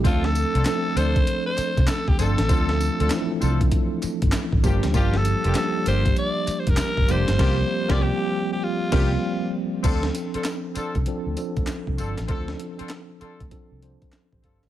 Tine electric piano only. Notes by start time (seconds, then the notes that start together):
0.04 F3 A3 C4 D4 A4
0.65 F3 A3 C4 D4 A4
2.19 F3 A3 C4 D4 A4
2.49 F3 A3 C4 D4 F4
3.10 E3 A3 C4 D4 E4
3.17 F3
4.63 F3 G3 A#3 D4 G4
5.54 F3 G3 A#3 D4 G4
7.08 F3 G3 A#3 D4 G4
7.39 F3 G3 A#3 C4 G4
7.89 F3 G3 A#3 C4 G4
8.92 F3 G3 A#3 C4
9.84 F3 C4 D4 A4
11.07 F3 C4 D4 A4
11.37 F3 C4 D4 A4
12.29 F3 C4 D4 A4
13.51 F3 C4 D4 A4
13.82 F3 C4 D4 C5
14.34 G4 C5
14.45 C5 F5
14.63 D5